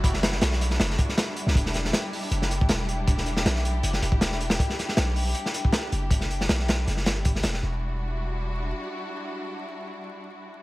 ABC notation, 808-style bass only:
X:1
M:4/4
L:1/16
Q:"Swing 16ths" 1/4=158
K:Em
V:1 name="808-style bass" clef=bass
F,,,4 B,,,4 F,,,2 z4 z ^C,, | E,,,4 z4 F,,,4 E,,,4- | E,,,4 B,,,4 F,,,2 E,,,6 | z4 B,,,4 z6 F,,,2- |
F,,,4 B,,,4 F,,,2 G,,,4 E,,,2 | E,,,12 z4 | z16 |]